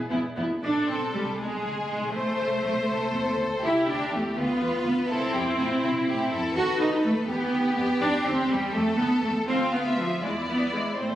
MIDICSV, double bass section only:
0, 0, Header, 1, 2, 480
1, 0, Start_track
1, 0, Key_signature, 0, "minor"
1, 0, Tempo, 505476
1, 607, Time_signature, 6, 3, 24, 8
1, 2986, Tempo, 487409
1, 8746, Tempo, 501672
1, 10810, End_track
2, 0, Start_track
2, 0, Title_t, "Double bass section"
2, 0, Program_c, 0, 48
2, 111, Note_on_c, 0, 28, 58
2, 187, Note_off_c, 0, 28, 0
2, 360, Note_on_c, 0, 28, 55
2, 436, Note_off_c, 0, 28, 0
2, 608, Note_on_c, 0, 33, 51
2, 831, Note_off_c, 0, 33, 0
2, 847, Note_on_c, 0, 35, 49
2, 1071, Note_off_c, 0, 35, 0
2, 1081, Note_on_c, 0, 36, 43
2, 1308, Note_off_c, 0, 36, 0
2, 1332, Note_on_c, 0, 35, 50
2, 1552, Note_off_c, 0, 35, 0
2, 1566, Note_on_c, 0, 37, 49
2, 1788, Note_off_c, 0, 37, 0
2, 1804, Note_on_c, 0, 35, 47
2, 2025, Note_off_c, 0, 35, 0
2, 2035, Note_on_c, 0, 33, 50
2, 2258, Note_off_c, 0, 33, 0
2, 2280, Note_on_c, 0, 36, 49
2, 2499, Note_off_c, 0, 36, 0
2, 2515, Note_on_c, 0, 35, 46
2, 2736, Note_off_c, 0, 35, 0
2, 2751, Note_on_c, 0, 36, 51
2, 2970, Note_off_c, 0, 36, 0
2, 2981, Note_on_c, 0, 40, 50
2, 3207, Note_off_c, 0, 40, 0
2, 3225, Note_on_c, 0, 38, 52
2, 3448, Note_off_c, 0, 38, 0
2, 3464, Note_on_c, 0, 36, 60
2, 3690, Note_off_c, 0, 36, 0
2, 3706, Note_on_c, 0, 38, 54
2, 3934, Note_off_c, 0, 38, 0
2, 3949, Note_on_c, 0, 40, 49
2, 4177, Note_off_c, 0, 40, 0
2, 4192, Note_on_c, 0, 38, 60
2, 4418, Note_off_c, 0, 38, 0
2, 4436, Note_on_c, 0, 40, 59
2, 4659, Note_off_c, 0, 40, 0
2, 4675, Note_on_c, 0, 38, 58
2, 4899, Note_off_c, 0, 38, 0
2, 4910, Note_on_c, 0, 36, 60
2, 5138, Note_off_c, 0, 36, 0
2, 5153, Note_on_c, 0, 41, 61
2, 5380, Note_off_c, 0, 41, 0
2, 5397, Note_on_c, 0, 45, 55
2, 5620, Note_off_c, 0, 45, 0
2, 5638, Note_on_c, 0, 48, 65
2, 5858, Note_off_c, 0, 48, 0
2, 5876, Note_on_c, 0, 45, 64
2, 6096, Note_off_c, 0, 45, 0
2, 6116, Note_on_c, 0, 41, 62
2, 6336, Note_off_c, 0, 41, 0
2, 6360, Note_on_c, 0, 39, 71
2, 6578, Note_off_c, 0, 39, 0
2, 6598, Note_on_c, 0, 36, 66
2, 6817, Note_off_c, 0, 36, 0
2, 6830, Note_on_c, 0, 39, 64
2, 7051, Note_off_c, 0, 39, 0
2, 7069, Note_on_c, 0, 40, 68
2, 7288, Note_off_c, 0, 40, 0
2, 7304, Note_on_c, 0, 38, 69
2, 7525, Note_off_c, 0, 38, 0
2, 7539, Note_on_c, 0, 41, 65
2, 7763, Note_off_c, 0, 41, 0
2, 7774, Note_on_c, 0, 40, 68
2, 8002, Note_off_c, 0, 40, 0
2, 8020, Note_on_c, 0, 38, 66
2, 8246, Note_off_c, 0, 38, 0
2, 8260, Note_on_c, 0, 40, 61
2, 8485, Note_off_c, 0, 40, 0
2, 8496, Note_on_c, 0, 41, 70
2, 8723, Note_off_c, 0, 41, 0
2, 8739, Note_on_c, 0, 38, 68
2, 8961, Note_off_c, 0, 38, 0
2, 8975, Note_on_c, 0, 40, 64
2, 9197, Note_off_c, 0, 40, 0
2, 9210, Note_on_c, 0, 38, 57
2, 9887, Note_off_c, 0, 38, 0
2, 9931, Note_on_c, 0, 40, 53
2, 10657, Note_on_c, 0, 33, 49
2, 10660, Note_off_c, 0, 40, 0
2, 10810, Note_off_c, 0, 33, 0
2, 10810, End_track
0, 0, End_of_file